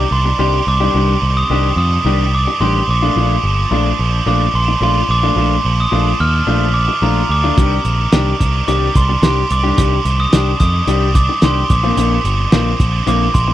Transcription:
Already playing: distorted electric guitar C3 D#3 G3 D4, glockenspiel D6
0.11 picked electric bass C2, distorted electric guitar D4, glockenspiel C6
0.25 muted clean electric guitar stroke
0.39 picked electric bass C2, clean electric guitar D#3 G3 D4 G4, distorted electric guitar G4, glockenspiel C6
0.67 picked electric bass C2, distorted electric guitar D4, glockenspiel D6
0.80 clean electric guitar D#3 G3 D4 G4
0.94 picked electric bass C2, distorted electric guitar C3, clean electric guitar D#3 G3 D4 G4
1.22 picked electric bass C2, distorted electric guitar D#3
1.37 glockenspiel D#6
1.50 picked electric bass C2, clean electric guitar D#3 G3 D4 G4, distorted electric guitar D4
1.76 picked electric bass F2, distorted electric guitar D#3, glockenspiel D#6
2.05 picked electric bass C2, clean electric guitar D#3 G3 D4 G4, distorted electric guitar G3
2.34 distorted electric guitar D4, glockenspiel D6
2.47 muted clean electric guitar stroke
2.60 picked electric bass A1, clean electric guitar D#3 G3 D4 G4, distorted electric guitar G4, glockenspiel C6
2.88 picked electric bass A#1, distorted electric guitar A#2, glockenspiel D6
3.02 clean electric guitar F3 A3 D4 F4
3.16 picked electric bass A#1, distorted electric guitar A#2, clean electric guitar F3 A3 D4 F4
3.43 picked electric bass G1, distorted electric guitar F3
3.71 picked electric bass A#1, clean electric guitar F3 A3 D4 F4, distorted electric guitar D4
3.99 picked electric bass A#1, distorted electric guitar F3
4.26 picked electric bass A#1, clean electric guitar F3 A3 D4 F4, distorted electric guitar A3, glockenspiel D6
4.54 picked electric bass A#1, distorted electric guitar D4, glockenspiel C6
4.68 muted clean electric guitar stroke
4.81 picked electric bass A#1, clean electric guitar F3 A3 D4 F4, distorted electric guitar F4, glockenspiel C6
5.09 picked electric bass A#1, distorted electric guitar D4, glockenspiel D6
5.23 clean electric guitar F3 A3 D4 F4
5.36 picked electric bass A#1, distorted electric guitar A#2, clean electric guitar F3 A3 D4 F4
5.65 picked electric bass A#1, distorted electric guitar F3
5.80 glockenspiel D#6
5.92 picked electric bass A#1, clean electric guitar F3 A3 D4 F4, distorted electric guitar D4
6.20 picked electric bass D#2, distorted electric guitar F3, glockenspiel F6
6.47 picked electric bass A#1, clean electric guitar F3 A3 D4 F4, distorted electric guitar A3
6.74 distorted electric guitar D4, glockenspiel D6
6.88 muted clean electric guitar stroke
7.02 picked electric bass A#1, clean electric guitar F3 A3 D4 F4, distorted electric guitar F4, glockenspiel A#5
7.29 picked electric bass D2, distorted electric guitar D4, glockenspiel D6
7.44 clean electric guitar F3 A3 D4 F4
7.57 picked electric bass C2, distorted electric guitar C3, clean electric guitar D#3 G3 D4 G4, kick, closed hi-hat
7.85 picked electric bass A#1, distorted electric guitar D#3, closed hi-hat
8.12 picked electric bass C2, clean electric guitar D#3 G3 D4 G4, distorted electric guitar D4, snare, closed hi-hat
8.40 picked electric bass C2, distorted electric guitar D#3, kick, closed hi-hat
8.68 picked electric bass C2, clean electric guitar D#3 G3 D4 G4, distorted electric guitar G3, glockenspiel D6, closed hi-hat
8.95 picked electric bass C2, distorted electric guitar D4, glockenspiel C6, kick, closed hi-hat
9.09 muted clean electric guitar stroke
9.22 picked electric bass C2, clean electric guitar D#3 G3 D4 G4, distorted electric guitar G4, glockenspiel C6, snare, closed hi-hat
9.50 picked electric bass C2, distorted electric guitar D4, glockenspiel D6, closed hi-hat
9.63 clean electric guitar D#3 G3 D4 G4
9.77 picked electric bass C2, distorted electric guitar C3, clean electric guitar D#3 G3 D4 G4, kick, closed hi-hat
10.05 picked electric bass C2, distorted electric guitar D#3, closed hi-hat
10.20 glockenspiel D#6
10.33 picked electric bass C2, clean electric guitar D#3 G3 D4 G4, distorted electric guitar D4, snare, closed hi-hat
10.60 picked electric bass F2, distorted electric guitar D#3, glockenspiel D#6, kick, closed hi-hat
10.87 picked electric bass C2, clean electric guitar D#3 G3 D4 G4, distorted electric guitar G3, closed hi-hat
11.15 distorted electric guitar D4, glockenspiel D6, kick, closed hi-hat
11.29 muted clean electric guitar stroke
11.42 picked electric bass C2, clean electric guitar D#3 G3 D4 G4, distorted electric guitar G4, glockenspiel C6, snare, closed hi-hat
11.70 picked electric bass A#1, distorted electric guitar A#2, glockenspiel D6, kick, closed hi-hat
11.84 clean electric guitar D3 A#3 C4 F4
11.97 picked electric bass A#1, distorted electric guitar A#2, clean electric guitar D3 A#3 C4 F4, closed hi-hat
12.24 picked electric bass G1, distorted electric guitar D3, closed hi-hat
12.52 picked electric bass A#1, clean electric guitar D3 A#3 C4 F4, distorted electric guitar C4, snare, closed hi-hat
12.80 picked electric bass A#1, distorted electric guitar D3, kick, closed hi-hat
13.07 picked electric bass A#1, clean electric guitar D3 A#3 C4 F4, distorted electric guitar A#3, glockenspiel D6, closed hi-hat
13.34 picked electric bass A#1, distorted electric guitar C4, glockenspiel C6, kick, closed hi-hat
13.48 muted clean electric guitar stroke

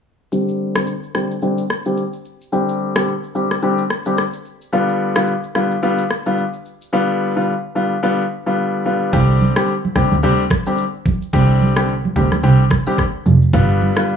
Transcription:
0.32 grand piano D3 G3 C4 G4, shaker
0.48 shaker
0.75 grand piano D3 G3 C4 G4, cross-stick, shaker
0.87 shaker
1.03 shaker
1.15 grand piano D3 G3 C4 G4, cross-stick, shaker
1.31 shaker
1.42 grand piano D3 G3 C4 G4, shaker
1.58 shaker
1.70 cross-stick
1.85 grand piano D3 G3 C4 G4, shaker
1.97 shaker
2.13 shaker
2.25 shaker
2.41 shaker
2.52 grand piano D3 G3 C4 G4, shaker
2.69 shaker
2.95 grand piano D3 G3 C4 G4, cross-stick, shaker
3.07 shaker
3.24 shaker
3.35 grand piano D3 G3 C4 G4, shaker
3.51 cross-stick, shaker
3.62 grand piano D3 G3 C4 G4, shaker
3.78 shaker
3.90 cross-stick
4.06 grand piano D3 G3 C4 G4, shaker
4.17 cross-stick, shaker
4.33 shaker
4.45 shaker
4.61 shaker
4.73 grand piano D3 G3 B3 F4, shaker
4.89 shaker
5.15 grand piano D3 G3 B3 F4, cross-stick, shaker
5.27 shaker
5.44 shaker
5.55 grand piano D3 G3 B3 F4, cross-stick, shaker
5.71 shaker
5.82 grand piano D3 G3 B3 F4, shaker
5.98 shaker
6.11 cross-stick
6.26 grand piano D3 G3 B3 F4, shaker
6.38 shaker
6.53 shaker
6.65 shaker
6.82 shaker
6.93 grand piano D3 G3 B3 F4
7.36 grand piano D3 G3 B3 F4
7.75 grand piano D3 G3 B3 F4
8.03 grand piano D3 G3 B3 F4
8.46 grand piano D3 G3 B3 F4
8.85 grand piano D3 G3 B3 F4
9.13 double bass C2, grand piano D3 G3 C4 G4, kick, low conga, shaker
9.41 high conga, shaker
9.56 grand piano D3 G3 C4 G4, cross-stick, shaker
9.67 shaker
9.85 high conga
9.95 grand piano D3 G3 C4 G4, kick, cross-stick, low conga, shaker
10.12 double bass D2, high conga, shaker
10.23 grand piano D3 G3 C4 G4, low conga, shaker
10.50 kick, cross-stick, high conga, shaker
10.66 grand piano D3 G3 C4 G4, shaker
10.78 shaker
11.06 kick, high conga, shaker
11.22 shaker
11.33 double bass C2, grand piano D3 G3 C4 G4, kick, low conga, shaker
11.61 high conga, shaker
11.76 grand piano D3 G3 C4 G4, cross-stick, shaker
11.87 shaker
12.05 high conga
12.16 double bass D2, grand piano D3 G3 C4 G4, kick, low conga, shaker
12.32 cross-stick, high conga, shaker
12.43 double bass C2, grand piano D3 G3 C4 G4, low conga, shaker
12.70 kick, cross-stick, high conga, shaker
12.86 grand piano D3 G3 C4 G4, shaker
12.98 kick, cross-stick, shaker
13.26 double bass F1, high conga, shaker
13.42 shaker
13.53 double bass G1, grand piano D3 G3 B3 F4, kick, low conga, shaker
13.81 high conga, shaker
13.96 grand piano D3 G3 B3 F4, cross-stick, shaker
14.08 shaker

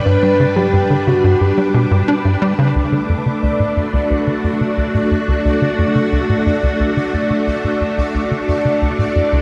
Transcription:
Already playing: synth drone G2, string machine G3 D4 B4
0.05 analog synth bass G2, soft synth lead B4
0.23 analog synth bass G3
0.40 analog synth bass C#3
0.56 analog synth bass F#3, soft synth lead G4
0.73 analog synth bass G2
0.90 analog synth bass D3
1.07 analog synth bass C#3, soft synth lead F#4
1.24 analog synth bass G2
1.40 analog synth bass G2, soft synth lead G4
1.58 analog synth bass G3
1.74 analog synth bass B2
1.91 analog synth bass G2
2.08 analog synth bass D4
2.25 analog synth bass G2
2.42 analog synth bass G3
2.59 analog synth bass C#3
2.75 analog synth bass D2, string machine A3, synth texture D5
2.92 analog synth bass D3
3.09 analog synth bass F#2
3.26 analog synth bass C#3
3.43 analog synth bass D2
3.60 analog synth bass A2, string machine F#4
3.77 analog synth bass F#2
3.93 analog synth bass D2
4.10 analog synth bass D2
4.27 analog synth bass D3
4.44 analog synth bass F#2
4.61 analog synth bass C#3
4.77 analog synth bass D2
4.94 analog synth bass A2
5.11 analog synth bass F#2
5.28 analog synth bass D2
5.45 analog synth bass D2
5.62 analog synth bass D3
5.78 analog synth bass F#2
5.95 analog synth bass C#3
6.12 analog synth bass D2
6.29 analog synth bass A2
6.46 analog synth bass F#2
6.63 analog synth bass D2
6.80 analog synth bass D2
6.97 analog synth bass D3
7.14 analog synth bass F#2
7.30 analog synth bass C#3
7.47 analog synth bass D2
7.64 analog synth bass A2
7.81 analog synth bass F#2
7.98 analog synth bass D2
8.14 analog synth bass D2
8.31 analog synth bass D3
8.48 analog synth bass F#2
8.65 analog synth bass C#3
8.82 analog synth bass D2
8.99 analog synth bass A2
9.14 analog synth bass F#2, string machine E4
9.32 analog synth bass D2

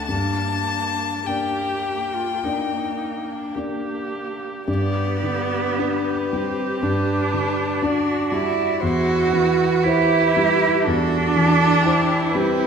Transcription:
Already playing: grand piano D2 A3 D4 D5
0.06 grand piano G2, viola D4, violin A5
0.11 cello A#3
1.27 grand piano A#3 D4 D5, cello A#3, viola G4, violin G5
2.15 viola F4
2.44 grand piano A#3 D4 D5, viola D#4
3.29 viola D4
3.55 grand piano A#3 D4 D5, viola G4
4.66 grand piano G2, cello B3, viola G4, violin D5
5.22 grand piano D3, viola G4
5.78 grand piano D4 D5, violin B4
6.32 grand piano G3, cello C4
6.83 grand piano G2, cello D4, violin B4
7.34 grand piano D3
7.82 grand piano D4 D5, viola F#4, violin D5
8.30 grand piano G3, cello E4, violin D5
8.81 grand piano E2, viola E4, cello F#4, violin C5
9.31 grand piano E3, violin B4
9.83 cello E4, grand piano E4 C5, viola G4
10.37 grand piano G3
10.82 cello D4, viola F#4, violin A4
10.87 grand piano E2
11.36 grand piano E3
11.82 viola E4, grand piano E4 C5, violin G4
12.29 violin B4
12.35 grand piano G3, cello C4

